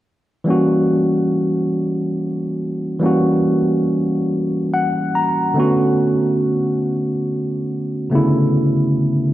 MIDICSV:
0, 0, Header, 1, 2, 480
1, 0, Start_track
1, 0, Tempo, 851064
1, 260, Time_signature, 6, 3, 24, 8
1, 5266, End_track
2, 0, Start_track
2, 0, Title_t, "Tine electric piano"
2, 0, Program_c, 0, 4
2, 250, Note_on_c, 0, 52, 56
2, 258, Note_on_c, 0, 55, 50
2, 267, Note_on_c, 0, 58, 48
2, 273, Note_on_c, 0, 61, 50
2, 284, Note_on_c, 0, 66, 62
2, 364, Control_c, 0, 64, 127
2, 1672, Note_off_c, 0, 52, 0
2, 1676, Note_off_c, 0, 55, 0
2, 1681, Note_off_c, 0, 58, 0
2, 1684, Note_off_c, 0, 61, 0
2, 1689, Note_off_c, 0, 66, 0
2, 1689, Note_on_c, 0, 52, 55
2, 1696, Note_on_c, 0, 55, 50
2, 1705, Note_on_c, 0, 58, 52
2, 1711, Note_on_c, 0, 61, 49
2, 1724, Note_on_c, 0, 66, 58
2, 2671, Note_on_c, 0, 78, 55
2, 2889, Note_off_c, 0, 78, 0
2, 2906, Note_on_c, 0, 82, 51
2, 3112, Note_off_c, 0, 52, 0
2, 3116, Note_off_c, 0, 55, 0
2, 3120, Note_off_c, 0, 58, 0
2, 3123, Note_off_c, 0, 61, 0
2, 3125, Note_on_c, 0, 50, 58
2, 3126, Note_off_c, 0, 82, 0
2, 3129, Note_off_c, 0, 66, 0
2, 3134, Note_on_c, 0, 57, 50
2, 3141, Note_on_c, 0, 59, 51
2, 3146, Control_c, 0, 64, 0
2, 3146, Note_on_c, 0, 61, 50
2, 3156, Note_on_c, 0, 66, 62
2, 3245, Control_c, 0, 64, 127
2, 4550, Note_off_c, 0, 50, 0
2, 4554, Note_off_c, 0, 57, 0
2, 4558, Note_off_c, 0, 59, 0
2, 4560, Note_off_c, 0, 61, 0
2, 4565, Note_off_c, 0, 66, 0
2, 4567, Note_on_c, 0, 49, 48
2, 4576, Note_on_c, 0, 57, 54
2, 4582, Note_on_c, 0, 59, 50
2, 4583, Note_off_c, 0, 49, 0
2, 4590, Note_on_c, 0, 49, 51
2, 4598, Note_on_c, 0, 64, 64
2, 4604, Note_on_c, 0, 50, 54
2, 5266, Note_off_c, 0, 49, 0
2, 5266, Note_off_c, 0, 50, 0
2, 5266, Note_off_c, 0, 57, 0
2, 5266, Note_off_c, 0, 59, 0
2, 5266, Note_off_c, 0, 64, 0
2, 5266, End_track
0, 0, End_of_file